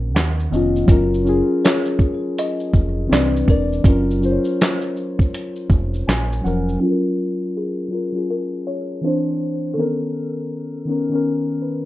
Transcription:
Already playing: A#1 D#3 B3 C#4 A#4
0.15 D#2 F#5, snare, clap, closed hi-hat, shaker
0.40 shaker
0.50 F1 D#3 B3 C#4 D#5, shaker
0.56 F4
0.76 shaker
0.86 F#1 F#3 C#4 F4, kick, closed hi-hat, shaker
0.91 A#4
1.14 shaker
1.23 F#3 C#4 F4, shaker
1.29 G#4
1.65 C#5, snare, clap, closed hi-hat, shaker
1.85 shaker
1.99 kick, shaker
2.38 D#5, closed hi-hat, shaker
2.60 shaker
2.74 F1, kick, shaker
3.07 E3 C4
3.11 C2 D4 B4 D5, snare, clap, closed hi-hat, shaker
3.36 shaker
3.45 E1 E3 C4 D4, kick
3.50 A#4 D5, shaker
3.73 shaker
3.83 F#1 F#3 C#4 F4, kick, closed hi-hat, shaker
3.89 A#4
4.11 shaker
4.19 F#3 C#4 F4, shaker
4.25 C5
4.32 C#5
4.45 shaker
4.61 snare, clap, closed hi-hat, shaker
4.81 shaker
4.97 shaker
5.19 kick, shaker
5.34 closed hi-hat, shaker
5.56 shaker
5.70 F1, kick, shaker
5.94 shaker
6.07 A#1 G#5, snare, clap, closed hi-hat, shaker
6.32 shaker
6.41 F1 F#3 C#4 F#5
6.45 F3 A#4, shaker
6.69 shaker
6.78 F#3 C#4 F4
6.84 A4
6.91 A#4
7.57 G#4
7.88 F#3 C#4 F4
7.94 A#4
8.12 F#3 C#4 F4
8.18 G#4
8.30 A#4
8.67 C#5
9.01 E3 C4 D4 C5
9.07 C5
9.74 D#3 B3 A4
9.78 C#4 A#4
10.85 D#3 B3 C#4
10.91 A#4
11.09 D#3 B3 C#4
11.15 A#4
11.62 B4

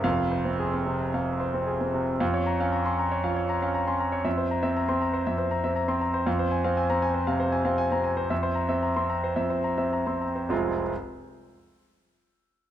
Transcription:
0.03 F1 F2 F5
0.32 C5
0.45 C4
0.60 G#4
0.74 C4
0.86 C3
1.14 C3 F5
1.40 C5
1.54 C4
1.67 G#4
1.81 C4
1.94 C3
2.20 F2 F5
2.34 C#5
2.46 A#5
2.60 C#4 F5
2.72 A#5
2.85 C#4 C6
2.99 A#5
3.12 C#5
3.24 F3 F5
3.36 C#5
3.49 A#5
3.62 C#4 F5
3.74 A#5
3.87 C#4 C6
4.00 A#5
4.12 C#5
4.25 F2 E5
4.38 C5
4.51 A#5
4.63 C4 E5
4.77 A#5
4.88 C4 C6
5.01 A#5
5.13 C5
5.27 F2 E5
5.38 C5
5.51 A#5
5.64 C4 E5
5.76 A#5
5.88 C4 C6
6.01 A#5
6.14 C5
6.26 F2 F5
6.39 C5
6.51 G#5
6.64 C4 F5
6.77 G#5
6.90 C4 A#5
7.02 G#5
7.14 C5
7.27 C3 F5
7.40 C5
7.52 G#5
7.65 C4 F5
7.78 G#5
7.92 C4 A#5
8.04 G#5
8.17 C5
8.30 F2 E5
8.43 C5
8.55 A#5
8.69 C4 E5
8.83 A#5
8.96 C4 C6
9.09 A#5
9.24 C5
9.36 F2 E5
9.50 C5
9.64 A#5
9.78 C4 E5
9.93 A#5
10.07 C4 C6
10.21 A#5
10.36 C5
10.49 F1 C2 F3 G#3 C4 F4

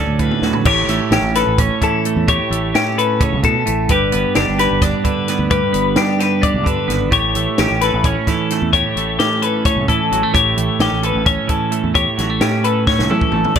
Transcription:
Already playing: D2 D3 F#3 C#4 A4 D5
0.07 D2
0.19 A2 B4, kick, closed hi-hat
0.31 high tom
0.42 D2 F#3, snare
0.53 floor tom
0.65 A1 A2 G4 C#5, kick, crash
0.88 A1 A3, snare, closed hi-hat
1.11 A1 C#4 G4, snare, closed hi-hat
1.22 A1
1.35 A4 B4, snare, closed hi-hat
1.47 A1
1.58 C#4 C#5, kick, closed hi-hat
1.82 E3 A4, kick, closed hi-hat
2.05 A3, closed hi-hat
2.16 E2
2.28 A2 G4 C#5, kick, closed hi-hat
2.50 A1 A3, closed hi-hat
2.74 A2 C#4 G4, snare, closed hi-hat
2.98 A4 B4, closed hi-hat
3.20 C#3 C#5, kick, closed hi-hat
3.33 C#2
3.43 A2 B2 A4, kick, closed hi-hat
3.66 A1 A2, closed hi-hat
3.89 G1 G2 G4 B4, kick, closed hi-hat
4.12 G1 B3, closed hi-hat
4.35 G1 D4 G4, snare, closed hi-hat
4.49 G1
4.59 G4 B4, snare, closed hi-hat
4.71 G1
4.82 D4 D5, kick, snare, closed hi-hat
5.04 D3 B4, kick, closed hi-hat
5.28 B3, snare, closed hi-hat
5.39 D2
5.50 G2 G4 B4, kick, closed hi-hat
5.73 G1 B3, closed hi-hat
5.96 G2 D4 G4, snare, closed hi-hat
6.20 G4 B4, snare, closed hi-hat
6.42 D4 D5, kick, closed hi-hat
6.54 C#2
6.64 G2 D3 B4, kick, closed hi-hat
6.88 G#1 B3, snare, closed hi-hat
7.11 A1 A2 G4 C#5, kick, closed hi-hat
7.35 A1 A3, closed hi-hat
7.58 A1 C#4 G4, snare, closed hi-hat
7.71 A1
7.81 A4 B4, snare, closed hi-hat
7.94 A1
8.04 C#4 C#5, kick, closed hi-hat
8.27 E3 A4, kick, snare, closed hi-hat
8.50 A3, snare, closed hi-hat
8.62 E2
8.73 A2 G4 C#5, kick, closed hi-hat
8.96 A1 A3, closed hi-hat
9.19 A2 C#4 G4, snare, closed hi-hat
9.42 A4 B4, closed hi-hat
9.65 C#4 C#5, kick, closed hi-hat
9.76 C#2
9.88 A2 E3 A4, kick, closed hi-hat
10.12 A1 F#3, closed hi-hat
10.23 A3
10.34 A1 A2 G4 C#5, kick, closed hi-hat
10.57 A1 A3, closed hi-hat
10.79 A1 C#4 G4, snare, closed hi-hat
10.92 A1
11.03 A4 B4, closed hi-hat
11.15 A1
11.26 C#4 C#5, kick, closed hi-hat
11.47 E3 A4, kick, closed hi-hat
11.72 A3, closed hi-hat
11.84 E2
11.94 A2 G4 C#5, kick, closed hi-hat
12.17 A1 F#3, snare, closed hi-hat
12.30 A3
12.41 A2 C#4 G4, snare, closed hi-hat
12.64 A4 B4, closed hi-hat
12.87 C#4 C#5, kick, snare
12.99 C#2, snare
13.10 A2 E3 A4, mid tom
13.21 kick
13.32 A1 A3, floor tom
13.45 floor tom
13.55 G1 G2, kick, crash

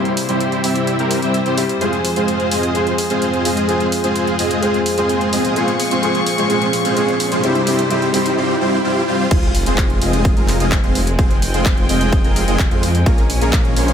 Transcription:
Already playing: C3 G3 C4 E4 G4 C5
0.05 closed hi-hat
0.17 open hi-hat
0.29 G3 C4 E4 G4 C5, closed hi-hat
0.40 closed hi-hat
0.52 closed hi-hat
0.64 G3 C4 E4 G4 E5, open hi-hat
0.75 closed hi-hat
0.87 closed hi-hat
0.99 G3 C4 E4 G4 A#4, closed hi-hat
1.11 open hi-hat
1.22 G3 C4 E4 G4 E5, closed hi-hat
1.34 closed hi-hat
1.46 G3 C4 E4 G4 C5, closed hi-hat
1.57 G3 C4 E4 G4, open hi-hat
1.69 closed hi-hat
1.80 F2 F3 G#3 C4 F4 G#4 C5, closed hi-hat, riser
1.93 closed hi-hat
2.05 open hi-hat
2.16 G#3 C4 F4 G#4 C5, closed hi-hat
2.28 closed hi-hat
2.40 closed hi-hat
2.51 G#3 C4 F4 G#4 D#5, open hi-hat
2.63 closed hi-hat
2.74 G#3 C4 F4 G#4 C5, closed hi-hat
2.87 closed hi-hat
2.98 open hi-hat
3.10 G#3 C4 F4 G#4 C5, closed hi-hat
3.22 closed hi-hat
3.34 closed hi-hat
3.45 G#3 C4 F4 G#4 D#5, open hi-hat
3.57 closed hi-hat
3.68 G#3 C4 F4 G#4 C5, closed hi-hat
3.80 closed hi-hat
3.92 open hi-hat
4.04 G#3 C4 F4 G#4 C5, closed hi-hat
4.16 closed hi-hat
4.27 closed hi-hat
4.39 G#3 C4 F4 G#4 D#5, open hi-hat
4.51 closed hi-hat
4.61 G#3 C4 F4 G#4 C5, closed hi-hat
4.74 closed hi-hat
4.86 open hi-hat
4.98 G#3 C4 F4 G#4 C5, closed hi-hat
5.09 closed hi-hat
5.21 closed hi-hat
5.33 G#3 C4 F4 G#4 D#5, open hi-hat
5.45 closed hi-hat
5.55 A#2 F3 G#3 C4 F4 G#4 C5 C#6, closed hi-hat
5.68 closed hi-hat
5.80 open hi-hat
5.91 G#3 C4 F4 G#4 C5, closed hi-hat
6.02 G#3 C4 F4 G#4 C5, closed hi-hat
6.15 closed hi-hat
6.26 open hi-hat
6.38 G#3 C4 F4 G#4 C5, closed hi-hat
6.49 G#3 C4 F4 G#4 C5, closed hi-hat
6.62 closed hi-hat
6.73 open hi-hat
6.85 G#3 C4 F4 G#4 C5, closed hi-hat
6.96 G#3 C4 F4 G#4 C5, closed hi-hat
7.08 closed hi-hat
7.20 open hi-hat
7.32 G#3 C4 F4 G#4 C5, closed hi-hat
7.43 C3 G3 C4 E4 G4 C5, closed hi-hat
7.55 closed hi-hat
7.66 G3 C4 E4 G4 C5, open hi-hat
7.79 closed hi-hat
7.89 G3 C4 E4 G4 C5, closed hi-hat
8.02 closed hi-hat
8.13 G3 C4 E4 G4 C5, open hi-hat
8.26 closed hi-hat
8.37 G3 C4 F4 G4 C5
8.61 G3 C4 F4 G4 C5
8.84 G3 C4 F4 G4 C5
9.08 G3 C4 F4 G4 C5
9.31 F1 G#3 C4 F4 G#4 C5, kick, closed hi-hat, crash, sub drop
9.43 closed hi-hat
9.55 open hi-hat
9.66 F1 G#3 C4 F4 G#4 C5, closed hi-hat
9.78 kick, clap, closed hi-hat
9.90 closed hi-hat
10.01 F1 G#3 C4 F4 G#4 D#5, open hi-hat
10.13 closed hi-hat
10.25 kick, closed hi-hat
10.37 F1 G#3 C4 F4 G#4 A#4, closed hi-hat
10.48 clap, open hi-hat
10.60 F1 G#3 C4 F4 G#4 D#5, closed hi-hat
10.72 kick, clap, closed hi-hat
10.83 F1 G#3 C4 F4 G#4 C5, closed hi-hat
10.95 open hi-hat
11.07 closed hi-hat
11.19 F1 G#3 C4 F4 G#4 C5 G5, kick, closed hi-hat
11.31 closed hi-hat
11.42 open hi-hat
11.54 F1 G#3 C4 F4 G#4 C5, closed hi-hat
11.66 kick, clap, closed hi-hat
11.78 closed hi-hat
11.89 F1 G#3 C4 F4 G#4 D#5, open hi-hat
12.01 closed hi-hat
12.12 kick, closed hi-hat
12.24 F1 G#3 C4 F4 G#4 A#4, closed hi-hat
12.36 open hi-hat
12.48 F1 G#3 C4 F4 G#4 D#5, closed hi-hat
12.59 kick, clap, closed hi-hat
12.71 F2 G#3 C4 F4 G#4 C5, closed hi-hat
12.83 open hi-hat
12.95 closed hi-hat
13.06 A#1 A#3 C#4 F4 G#4 A#4, kick, closed hi-hat
13.18 closed hi-hat
13.30 open hi-hat
13.41 A#1 A#3 C#4 F4 G#4 A#4, closed hi-hat
13.53 kick, clap, closed hi-hat
13.65 closed hi-hat
13.77 A#1 A#3 C#4 F4 G#4 C5, open hi-hat
13.88 closed hi-hat

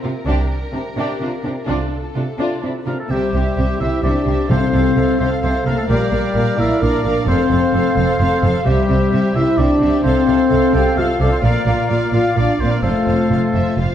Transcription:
Already playing: A#4
0.03 C3 C4 F4
0.26 C2 C3 D4 G4
0.73 C3 D4 G4
0.97 C3 D4 G4
1.21 C3 D4 F4
1.44 C3 D4 G4
1.66 C2 C3 D4 F4 A4
2.15 C3 D4 F4
2.38 C3 D4 F4
2.62 C3 D4 E4
2.86 C3 A#3 D4 F4 A#4
3.00 A3 A4
3.09 C2 C3 G3 G4 C5 E5
3.33 C2 C3 G4 C5 E5
3.56 C2 C3 G4 C5 E5
3.79 C2 C3 E4 G4 C5 E5
4.02 C2 C3 D4 G4 C5 D5 E5
4.26 C2 C3 G4 C5 E5
4.49 C2 C3 C4 A4 C5 F5
4.73 C2 C3 A4 C5 F5
4.96 C2 C3 A4 C5 F5
5.19 C2 C3 C4 A4 C5 F5
5.42 C2 C3 C4 A4 C5 F5
5.65 C2 C3 A#3 A4 A#4 C5 F5
5.78 A3 A4
5.89 A#1 A#2 G3 G4 A#4 D5 F5
6.11 A#1 A#2 A#4 D5 F5
6.34 A#1 A#2 A#4 D5 F5
6.57 A#1 A#2 E4 A#4 D5 E5 F5
6.82 A#1 A#2 D4 A#4 D5 F5
7.04 A#1 A#2 A#4 D5 F5
7.27 F1 F2 C4 A4 C5 F5
7.50 F1 F2 A4 C5 F5
7.73 F1 F2 A4 C5 F5
7.96 F1 F2 C4 A4 C5 F5
8.19 F1 F2 C4 A4 C5 F5
8.43 F1 F2 A4 C5 F5
8.65 C2 C3 G3 G4 C5 E5
8.89 C2 C3 G4 C5 E5
9.12 C2 C3 G4 C5 E5
9.35 C2 C3 E4 G4 C5 E5
9.58 C2 C3 D4 G4 C5 D5 E5
9.81 C2 C3 G4 C5 E5
10.04 C2 C3 C4 A4 C5 F5
10.26 C2 C3 A4 C5 F5
10.49 C2 C3 A4 C5 F5
10.72 C2 C3 G4 A4 C5 F5 G5
10.96 C2 C3 F4 A4 C5 F5
11.18 C2 C3 D4 A4 C5 D5 F5
11.32 C4 C5
11.42 A#1 A#2 A#3 F4 A#4 D5 F5
11.66 A#1 A#2 F4 D5 F5
11.89 A#1 A#2 F4 D5 F5
12.11 A#1 A#2 F4 D5 F5
12.36 A#1 A#2 D4 F4 D5 F5
12.59 A#1 A#2 C4 F4 C5 D5 F5
12.71 A#3 A#4
12.82 F1 F2 A3 F4 A4 C5 F5
13.06 F1 F2 F4 C5 F5
13.29 F1 F2 F4 C5 F5
13.54 F1 F2 F4 C5 E5
13.77 F1 F2 F4 C5 F5

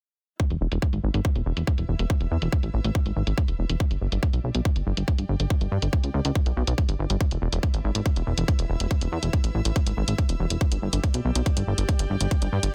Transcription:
0.40 E4, kick, closed hi-hat
0.50 E1, closed hi-hat
0.61 E1
0.72 E1 B4, closed hi-hat
0.82 kick, closed hi-hat
0.93 G#1, closed hi-hat
0.99 E5
1.04 G#1
1.14 G#1, closed hi-hat
1.25 kick, closed hi-hat
1.35 E1, closed hi-hat
1.46 E1
1.57 E1 E6, closed hi-hat
1.67 kick, closed hi-hat
1.78 E1, closed hi-hat
1.89 E1
1.99 E1, closed hi-hat
2.10 kick, closed hi-hat
2.21 E1, closed hi-hat
2.31 E2
2.42 E1, closed hi-hat
2.52 kick, closed hi-hat
2.63 A1, closed hi-hat
2.74 A1
2.84 A1, closed hi-hat
2.95 kick, closed hi-hat
3.06 G#1, closed hi-hat
3.16 G#1
3.27 G#1, closed hi-hat
3.38 kick, closed hi-hat
3.48 E1, closed hi-hat
3.59 E1
3.69 E1, closed hi-hat
3.80 G4, kick, closed hi-hat
3.86 D5
3.91 G1, closed hi-hat
4.01 G1
4.12 G1, closed hi-hat
4.23 kick, closed hi-hat
4.33 B1, closed hi-hat
4.44 B1
4.55 B1, closed hi-hat
4.65 kick, closed hi-hat
4.76 G1, closed hi-hat
4.82 G5
4.87 G1
4.97 G1, closed hi-hat
5.08 kick, closed hi-hat
5.18 G1, closed hi-hat
5.29 G1
5.40 G1, closed hi-hat
5.50 kick, closed hi-hat
5.61 G1, closed hi-hat
5.72 G2
5.82 G1, closed hi-hat
5.93 kick, closed hi-hat
6.04 C#2, closed hi-hat
6.14 C#2
6.25 C#2, closed hi-hat
6.35 kick, closed hi-hat
6.46 B1, closed hi-hat
6.57 B1
6.67 B1, closed hi-hat
6.78 kick, closed hi-hat
6.89 G1, closed hi-hat
6.99 G1
7.10 G1, closed hi-hat
7.21 E4, kick, closed hi-hat
7.31 E1, closed hi-hat
7.42 E1
7.52 E1 B4 E5, closed hi-hat
7.63 kick, closed hi-hat
7.74 G#1, closed hi-hat
7.83 G#1 E6
7.95 G#1, closed hi-hat
8.06 kick, closed hi-hat
8.16 E1, closed hi-hat
8.27 E1
8.38 E1, closed hi-hat
8.48 kick, closed hi-hat
8.59 E1, closed hi-hat
8.69 E1
8.80 E1, closed hi-hat
8.91 kick, closed hi-hat
9.01 E1, closed hi-hat
9.12 E2
9.23 E1, closed hi-hat
9.33 kick, closed hi-hat
9.44 A1, closed hi-hat
9.55 A1
9.65 A1, closed hi-hat
9.76 kick, closed hi-hat
9.86 G#1, closed hi-hat
9.97 G#1
10.08 G#1, closed hi-hat
10.18 kick, closed hi-hat
10.29 E1, closed hi-hat
10.40 E1
10.50 E1, closed hi-hat
10.61 G4, kick, closed hi-hat
10.72 G1, closed hi-hat
10.82 G1
10.93 G1, closed hi-hat
11.02 D5, kick, closed hi-hat
11.08 G5
11.14 B1, closed hi-hat
11.25 B1
11.35 B1, closed hi-hat
11.46 kick, closed hi-hat
11.57 G1, closed hi-hat
11.67 G1
11.78 G1, closed hi-hat
11.89 kick, closed hi-hat
11.99 G1, closed hi-hat
12.10 G1
12.21 G1, closed hi-hat
12.31 kick, closed hi-hat
12.42 G1, closed hi-hat
12.52 G2
12.63 G1, closed hi-hat

